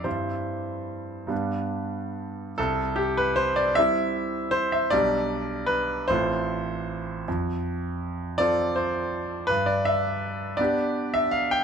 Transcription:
\new Staff \with { instrumentName = "Grand piano" } { \time 6/8 \key c \major \tempo 4. = 52 << { <g, g c' e' c''>4. <g, g b d'>4. | a'8 g'16 b'16 c''16 d''16 e''4 c''16 e''16 | d''4 b'8 c''4. | r4. d''8 c''4 |
b'16 d''16 e''4 d''8. e''16 f''16 g''16 | } \\ { r2. | c,4. <g c' e'>4. | <b,, g d' g'>4. <a,, c' f' a'>4. | f,4. <c' f' a'>4. |
g,4. <b d' g'>4. | } >> }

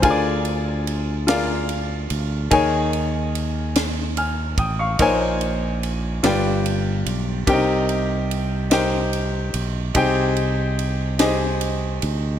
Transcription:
<<
  \new Staff \with { instrumentName = "Grand piano" } { \time 6/8 \key aes \major \tempo 4. = 48 << { r2. | r2 <aes'' f'''>8 <g'' ees'''>16 <f'' des'''>16~ | <f'' des'''>16 r2 r8. | r2. |
r2. | } \\ { <f' aes' bes' c'' d'' aes''>4 r8 <f' aes' bes' d'' f''>4 r8 | <ees' aes' bes' des'' aes''>4 r2 | <ees' bes' c'' des'' aes''>4 r8 <f' g' b' d'' g''>4 r8 | <d' ees' g' bes' c'' g''>4 r8 <ees' g' bes' c'' g''>4 r8 |
<ees' g' aes' c'' g''>4 r8 <ees' g' aes' c'' ees''>4 r8 | } >> }
  \new Staff \with { instrumentName = "Grand piano" } { \clef bass \time 6/8 \key aes \major d4. r4. | ees4. r4. | bes,4. g,4. | c4. r4. |
c4. r4. | }
  \new Staff \with { instrumentName = "Fingered electric bass" } { \clef bass \time 6/8 \key aes \major d,2~ d,8 d,8 | ees,2~ ees,8 a,,8 | bes,,4. g,,4 b,,8 | c,2~ c,8 ces,8 |
c,2~ c,8 d,8 | }
  \new DrumStaff \with { instrumentName = "Drums" } \drummode { \time 6/8 <bd cymr>8 cymr8 cymr8 <cymr sn>8 cymr8 cymr8 | <bd cymr>8 cymr8 cymr8 <cymr sn>8 cymr8 <bd cymr>8 | <bd cymr>8 cymr8 cymr8 <cymr sn>8 cymr8 cymr8 | <bd cymr>8 cymr8 cymr8 <cymr sn>8 cymr8 cymr8 |
<bd cymr>8 cymr8 cymr8 <cymr sn>8 cymr8 cymr8 | }
>>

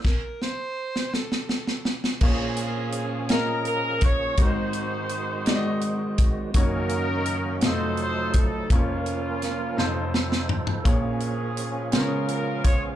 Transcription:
<<
  \new Staff \with { instrumentName = "Alto saxophone" } { \time 6/8 \key bes \minor \tempo 4. = 56 bes'8 c''4 a'4 r8 | r2. | r2. | r2. |
r2. | r2. | }
  \new Staff \with { instrumentName = "Horn section" } { \time 6/8 \key bes \minor << { r2. | aes'4. bes'8 bes'8 des''8 | c''2~ c''8 r8 | bes'4. c''8 c''8 a'8 |
f'2~ f'8 r8 | aes'4. bes'8 bes'8 des''8 | } \\ { r2. | <des' f'>4. r4. | <ees' ges'>2~ <ees' ges'>8 r8 | <des' ees'>4. <ees' a'>4. |
<bes des'>2~ <bes des'>8 r8 | <des' f'>4. f'4. | } >> }
  \new Staff \with { instrumentName = "Grand piano" } { \time 6/8 \key bes \minor r2. | <bes f' aes' des''>4 r8 <bes f' aes' ees''>4 r8 | <aes ees' ges' bes' c''>4 r8 <aes ees' ges' d'' ees''>4 r8 | <bes ees' ges' des''>4 r8 <a f' ges' ees''>4 r8 |
<bes des' f' des''>4 r8 <ges ees' f' a' c''>4 r8 | <bes f' aes' des''>4 r8 <ces' f' aes' c'' des''>4 r8 | }
  \new Staff \with { instrumentName = "Grand piano" } { \clef bass \time 6/8 \key bes \minor r2. | <bes,, bes,>2. | <aes,, aes,>2. | <ges,, ges,>4. <f,, f,>4. |
<f,, f,>4. <f,, f,>4. | <bes,, bes,>4. <des, des>4. | }
  \new Staff \with { instrumentName = "Tonewheel organ" } { \time 6/8 \key bes \minor r2. | <f bes des' aes'>2. | <ees aes c' ges'>2. | <ges, ees bes des' ges'>4. <f ges a ees' f'>4. |
<f bes des' a' bes'>4. <f ees' a' c''>4. | <f bes c' des' aes'>4. <f ces' des' aes'>4. | }
  \new DrumStaff \with { instrumentName = "Drums" } \drummode { \time 6/8 <cymc bd sn>8 sn8. sn16 sn16 sn16 sn16 sn16 sn16 sn16 | <cymc bd>8 hh8 hh8 <hh sn>8 hh8 <hh bd>8 | <hh bd>8 hh8 hh8 <hh sn>8 hh8 <hh bd>8 | <hh bd>8 hh8 hh8 <hh sn>8 hh8 <hh bd>8 |
<hh bd>8 hh8 <hh sn>8 sn8 sn16 sn16 tomfh16 tomfh16 | <hh bd>8 hh8 hh8 <hh sn>8 hh8 <hh bd>8 | }
>>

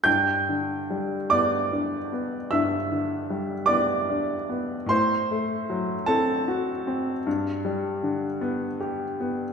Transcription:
<<
  \new Staff \with { instrumentName = "Upright piano" } { \time 12/8 \key g \major \tempo 4. = 51 <g'' g'''>4. <d'' d'''>4. <e'' e'''>4. <d'' d'''>4. | <c'' c'''>4. <a' a''>1~ <a' a''>8 | }
  \new Staff \with { instrumentName = "Upright piano" } { \time 12/8 \key g \major g,8 d8 g8 b8 d'8 b8 g,8 d8 g8 b8 d'8 b8 | a,8 a8 fis8 c'8 fis'8 c'8 g,8 g8 d8 b8 g'8 b8 | }
>>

